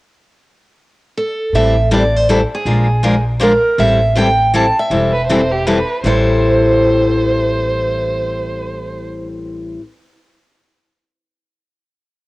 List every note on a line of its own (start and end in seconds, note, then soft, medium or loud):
1.17 1.55 A4 medium
1.53 2.43 A1 medium
1.53 1.74 E3 soft
1.53 1.75 G3 medium
1.53 1.75 C4 medium
1.53 1.75 E4 medium
1.53 1.75 A4 medium
1.53 1.89 E5 medium
1.91 2.02 E3 medium
1.91 2.02 G3 medium
1.91 2.02 C4 medium
1.91 2.02 E4 medium
1.91 2.02 A4 medium
1.91 2.16 D5 medium
2.16 2.30 C5 medium
2.29 2.39 E3 medium
2.29 2.39 G3 medium
2.29 2.40 C4 medium
2.29 2.40 E4 medium
2.29 2.40 A4 medium
2.29 2.36 A4 medium
2.55 3.24 G#4 medium
2.65 3.55 A#1 medium
2.65 2.86 F3 medium
2.65 2.86 G#3 medium
2.65 2.86 D4 medium
2.65 2.87 F4 medium
2.65 2.87 A#4 medium
3.03 3.14 F3 medium
3.03 3.14 G#3 medium
3.03 3.14 D4 medium
3.03 3.14 F4 medium
3.03 3.14 A#4 medium
3.40 3.51 F3 medium
3.40 3.51 G#3 medium
3.40 3.51 D4 medium
3.40 3.52 F4 loud
3.40 3.52 A#4 loud
3.40 3.80 A#4 medium
3.78 4.68 A1 medium
3.78 3.99 E3 medium
3.78 3.99 G3 medium
3.78 3.99 C4 medium
3.78 3.99 E4 medium
3.78 3.99 A4 medium
3.78 4.17 E5 medium
4.15 4.26 E3 medium
4.15 4.27 G3 medium
4.15 4.27 C4 medium
4.15 4.27 E4 medium
4.15 4.27 A4 medium
4.15 4.52 G5 medium
4.53 4.64 E3 medium
4.53 4.64 G3 medium
4.53 4.64 C4 medium
4.53 4.65 E4 medium
4.53 4.65 A4 medium
4.53 4.78 A5 medium
4.79 5.63 E5 medium
4.90 5.81 E1 medium
4.90 5.11 E3 medium
4.90 5.11 G3 medium
4.90 5.11 C4 medium
4.90 5.12 E4 medium
4.90 5.12 A4 medium
5.13 5.26 B4 medium
5.27 5.40 E3 medium
5.27 5.40 G3 medium
5.27 5.40 C4 medium
5.27 5.40 E4 medium
5.27 5.40 A4 medium
5.27 5.53 C5 medium
5.51 5.68 G4 medium
5.67 5.77 E3 medium
5.67 5.77 G3 medium
5.67 5.77 C4 medium
5.67 5.77 E4 medium
5.67 5.78 A4 medium
5.67 6.04 B4 medium
6.04 9.76 A1 medium
6.04 9.80 A2 medium
6.04 9.80 E3 medium
6.04 9.81 G3 medium
6.04 9.81 C4 medium
6.04 9.81 E4 medium
6.04 9.81 A4 medium
6.04 9.07 C5 medium
6.04 9.77 C5 medium